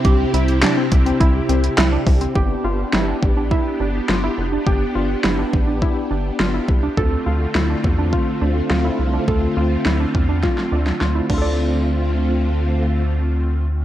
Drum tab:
CC |----------------|----------------|----------------|----------------|
HH |x-xxx-xxx-xxx-ox|----------------|----------------|----------------|
CP |----x-------x---|----------------|----------------|----------------|
SD |----o-------o---|----o-------o---|----o-------o---|----o-------o---|
BD |o-----o-o-----o-|o-----o-o-------|o-----o-o-----o-|o-----o-o-------|

CC |--------------x-|----------------|
HH |----------------|----------------|
CP |----------------|----------------|
SD |----o---oo-oo---|----------------|
BD |o-----o-o-----o-|----------------|